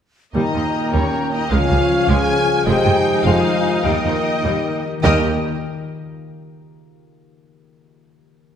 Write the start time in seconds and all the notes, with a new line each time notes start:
0.33 D#2 A#2 D#3 G3 A#3 D#4 A#4 D#5 G5 A#5
0.54 D#2 F3 G4
0.74 G#4
0.92 D#2 G3 G4 C#5
0.96 C#4
1.13 A#3
1.33 D#4 G4 D#5
1.49 C#2 C#3 F3 G#3 C#4 F4 C#5 F5 G#5
1.70 C#2 G3 F4
1.90 G3
2.08 C#2 G#3 F4 G#4 G#5
2.27 G#4
2.47 F4
2.65 F1 F2 D#3 F3 G#3 D#4 G4 C5 D#5 G5 G#5
2.85 F1 F2 G3 F4
3.05 G4
3.24 F1 F2 D#3 G#3 F4 C5 D#5 F5 G#5
3.44 G#4
3.64 F4
3.83 D#2 D#3 G3 A#3 D#4 A#4 D#5 G5
4.04 D#2 F3 G4
4.25 G#4
4.43 D#2 G3 G4
4.64 A#4
4.84 G4
5.00 D#3 A#3 D#4 G4 A#4 D#5 G5
5.04 D#2 D#3 G3 D#4 G4 D#5